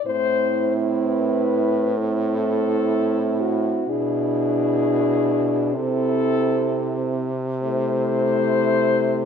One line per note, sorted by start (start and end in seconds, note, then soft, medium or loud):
0.05 3.84 A2 medium
0.05 1.94 C4 medium
0.05 1.93 E4 medium
0.05 0.74 C5 loud
1.02 1.99 B4 loud
1.97 3.84 C4 medium
1.97 3.84 E4 medium
1.97 3.43 A4 loud
3.41 3.91 F#4 medium
3.87 5.75 B2 medium
3.87 5.76 D4 medium
3.87 5.70 E4 medium
3.87 5.75 G#4 loud
5.74 9.25 C3 medium
5.74 7.35 C4 medium
5.74 7.32 E4 medium
5.74 7.12 A4 loud
7.63 9.25 A3 medium
7.63 9.25 E4 medium
7.63 9.25 C5 loud